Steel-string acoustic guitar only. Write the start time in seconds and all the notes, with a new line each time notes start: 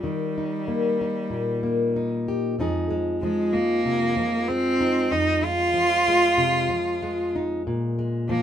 0.04 D#3
0.38 D#4
0.68 A#3
1.01 D#4
1.30 A#2
1.63 A#3
1.96 D#4
2.28 G4
2.59 F2 F3 G#3 D#4 G#4
2.90 G#3
3.23 F3
3.55 G#3
3.85 C3
4.17 F3
4.50 G#3
4.81 D#4
5.11 F2
5.43 G#3
5.74 F3
6.08 G#3
6.38 C3
6.70 F3
7.02 G#3
7.36 D#4
7.67 A#2
7.99 G#3
8.29 F3